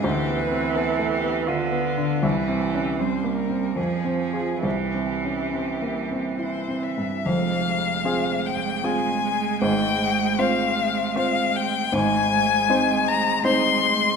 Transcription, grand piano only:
X:1
M:3/4
L:1/8
Q:1/4=78
K:Fm
V:1 name="Grand piano"
(3=D,, =B, C (3B, =A, B, (3F B, =D, | (3C,, C D (3C B, C (3F,, C [FA] | (3C,, C D (3C B, C (3=E C G,, | [F,,,F,,]2 [CFA]2 [CFA]2 |
[A,,,A,,]2 [CFc]2 [CFc]2 | [A,,,A,,]2 [CEc]2 [CEc]2 |]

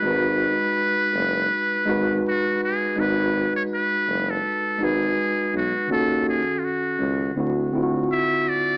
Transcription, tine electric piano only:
X:1
M:4/4
L:1/8
Q:"Swing 16ths" 1/4=82
K:G#phr
V:1 name="Tine electric piano"
[G,DFB]3 z2 [G,DFB]2 z | [G,DFB]3 z2 [G,DFB]2 z | [D,CFA]3 z [=D,=CEF] [D,CE^EF]2 z |]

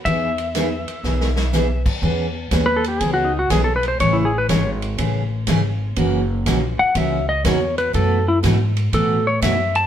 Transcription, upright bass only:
X:1
M:4/4
L:1/8
Q:"Swing" 1/4=122
K:E
V:1 name="Upright bass" clef=bass
E,,4 B,,,4 | E,,2 D,,2 C,,2 B,,,2 | A,,,2 G,,,2 A,,,2 G,,,2 | F,,,2 ^A,,, z C,,2 E,,2 |
F,,2 G,,2 A,,2 F,,2 |]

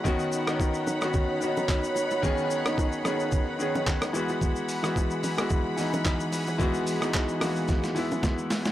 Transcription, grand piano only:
X:1
M:4/4
L:1/16
Q:"Swing 16ths" 1/4=110
K:F#dor
V:1 name="Grand piano"
[D,B,CF]2 z [D,B,CD]3 z [D,B,CF]2 z [D,B,CF]4- [D,B,CF] z | [D,B,CG]2 z [D,B,CD]2 z [D,B,CG]3 z [D,B,CG]4 [E,G,B,F]2- | [E,G,B,F]2 z [E,G,B,F]3 z [E,G,B,F]2 z [E,G,B,D]4- [E,G,B,D] z | [E,G,B,F]2 z [E,G,B,D]2 z [E,G,^A,B,F]3 z [E,G,B,E]4- [E,G,B,E] z |]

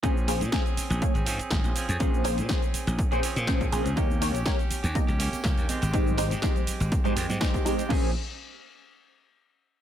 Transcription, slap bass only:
X:1
M:4/4
L:1/16
Q:"Swing 16ths" 1/4=122
K:Bbdor
V:1 name="Slap bass" clef=bass
B,,,3 B,, z3 B,,, z A,,, A,, z A,,, B,,, z F,, | B,,,3 B,, z3 B,,, z B,, z B,,2 z B,,, D,, | E,,3 B,,, z3 E,, z D,, D,, z D,, E,, z A,,, | A,,,3 A,, z3 A,,, z A,, F,, A,, z4 |
B,,,2 z12 z2 |]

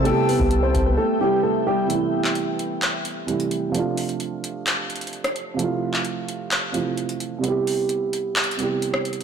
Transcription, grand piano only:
X:1
M:4/4
L:1/16
Q:1/4=130
K:Am
V:1 name="Grand piano"
[A,A]2 [B,B]3 [Cc]2 [B,B] [A,A]2 [G,G]2 [A,A]2 [G,G]2 | z16 | z16 | z16 |
z16 |]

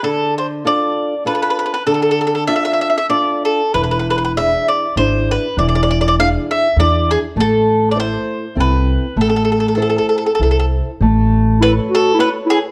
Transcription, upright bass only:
X:1
M:3/4
L:1/8
Q:1/4=99
K:Am
V:1 name="Upright bass" clef=bass
z6 | z6 | E,,,4 ^G,,,2 | E,,,4 E,,2 |
A,,,4 C,,2 | A,,,4 C,,2 | [K:A] A,,,4 z2 |]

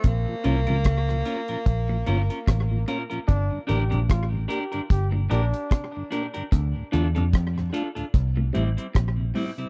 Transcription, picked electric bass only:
X:1
M:4/4
L:1/16
Q:"Swing 16ths" 1/4=74
K:Gdor
V:1 name="Picked electric bass" clef=bass
B,,, z C,, _D,, D,,2 z2 B,,,2 G,,, z A,,,2 z2 | G,,, z A,,, B,,, A,,,2 z2 G,,,2 B,,, z4 z | D,, z E,, F,, F,,2 z2 C,,2 A,,, z B,,,2 z2 |]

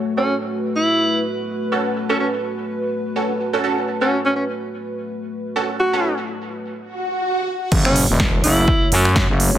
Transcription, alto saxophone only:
X:1
M:4/4
L:1/16
Q:"Swing 16ths" 1/4=125
K:F#m
V:1 name="Alto saxophone"
z C2 z3 E4 z6 | z C C z12 z | z C2 C C z8 z3 | F3 z12 z |
z C2 z3 E4 z6 |]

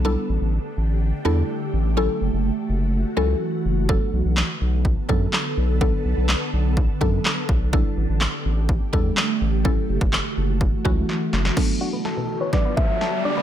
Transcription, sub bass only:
X:1
M:4/4
L:1/16
Q:1/4=125
K:Bm
V:1 name="Sub bass" clef=bass
B,,,2 A,,, A,,,2 z A,,,4 E,,2 z2 A,,,2- | A,,,2 F,,, F,,,2 z F,,,4 C,,2 z2 F,,,2- | F,,,2 B,,, B,,,2 z B,,,4 F,,2 z2 B,,,2- | B,,,2 B,,, B,,,2 z B,,,4 F,,2 z2 B,,,2- |
B,,,2 A,,, A,,,2 z A,,,4 E,,2 z2 A,,,2- | A,,,2 F,,, F,,,2 z F,,,4 C,,2 z2 F,,,2 | z16 |]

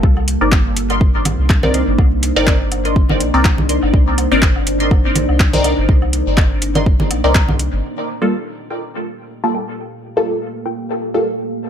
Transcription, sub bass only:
X:1
M:4/4
L:1/16
Q:"Swing 16ths" 1/4=123
K:Gm
V:1 name="Sub bass" clef=bass
C,,3 G,,,6- G,,, B,,, C,,4 G,,, | C,,3 G,,,6- G,,, B,,, C,,4 G,,, | C,,3 G,,,6- G,,, B,,, C,,4 G,,, | C,,3 G,,,6- G,,, B,,, C,,4 G,,, |
z16 | z16 |]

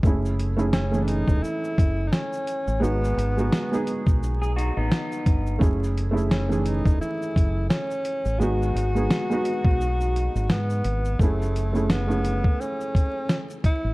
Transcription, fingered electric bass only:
X:1
M:4/4
L:1/16
Q:"Swing 16ths" 1/4=86
K:F#dor
V:1 name="Fingered electric bass" clef=bass
F,,,6- F,,, E,,, z2 F,,,2 z3 A,,, | G,,,2 G,,,2 z3 B,,,4 A,,, z2 =G,,,2 | F,,,6- F,,, E,,, z2 F,,,2 z3 A,,, | G,,,2 G,,,2 z3 B,,,4 G,,, G,,2 G,,,2 |
F,,,6- F,,, z8 A,,, |]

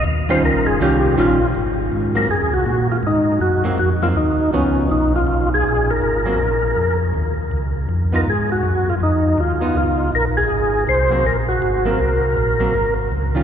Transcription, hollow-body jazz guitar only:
X:1
M:4/4
L:1/8
Q:"Swing" 1/4=161
K:Abmix
V:1 name="Hollow-body jazz guitar"
z [E,=G,DF]3 [E,G,DF]2 [E,G,DF] z | z3 [G,B,C] z4 | z3 [G,B,C] z [G,B,C] z2 | [F,_CE]4- [F,CE] z3 |
z [G,B,C] z6 | z3 [_CEF] z4 | z3 [_CEF]3 z2 | z3 [G,B,C] z3 [G,B,C] |
z3 [G,B,C] z3 [E,=G,DF] |]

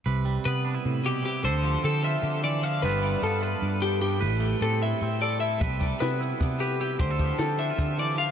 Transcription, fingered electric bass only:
X:1
M:7/8
L:1/8
Q:1/4=151
K:C
V:1 name="Fingered electric bass" clef=bass
C,,2 C,2 C,3 | D,,2 D,2 D,3 | G,,,2 G,,2 G,,3 | A,,,2 A,,2 A,,3 |
C,,2 C,2 C,3 | D,,2 D,2 D,3 |]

